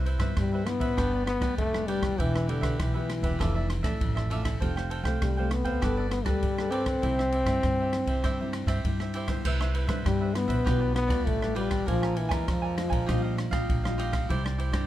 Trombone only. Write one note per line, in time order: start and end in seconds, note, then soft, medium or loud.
0.39 0.68 G3 medium
0.67 1.26 B3 loud
1.27 1.55 B3 loud
1.59 1.89 A3 medium
1.87 2.22 G3 medium
2.21 2.51 E3 medium
2.50 2.82 D3 medium
2.81 4.01 E3 medium
5.22 5.53 G3 medium
5.51 6.10 B3 medium
6.10 6.27 B3 medium
6.25 6.72 G3 medium
6.71 8.84 C4 loud
10.07 10.37 G3 medium
10.35 10.95 B3 loud
10.96 11.28 B3 loud
11.27 11.57 A3 medium
11.57 11.90 G3 medium
11.88 12.19 F3 medium
12.18 12.51 E3 medium
12.49 13.70 F3 medium